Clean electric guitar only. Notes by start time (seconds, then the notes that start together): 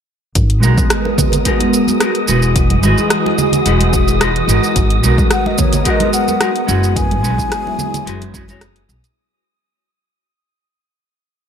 0.60 G#3 B3 D#4 F#4
0.64 A#4
1.45 G#3 B3 D#4 F#4 A#4
2.00 G#3 B3 D#4 F#4 A#4
2.27 G#3 D#4 E4 F#4 B4
2.82 G#3 D#4 E4 F#4 B4
3.65 G#3 D#4 E4 F#4 B4
4.20 G#3 D#4 E4 F#4 B4
4.48 G#3 B3 D#4 F#4 A#4
5.02 G#3 B3 D#4 F#4 A#4
5.84 G#3 B3 D#4 F#4 A#4
6.40 G#3 B3 D#4 F#4 A#4
6.66 G#3 C#4 E4 F#4 B4
7.21 G#3 C#4 E4 F#4 B4
8.06 G#3 C#4 E4 F#4 B4
8.34 G#3 C#4 E4 F#4 B4
8.49 G#3 C#4 E4 F#4 C#5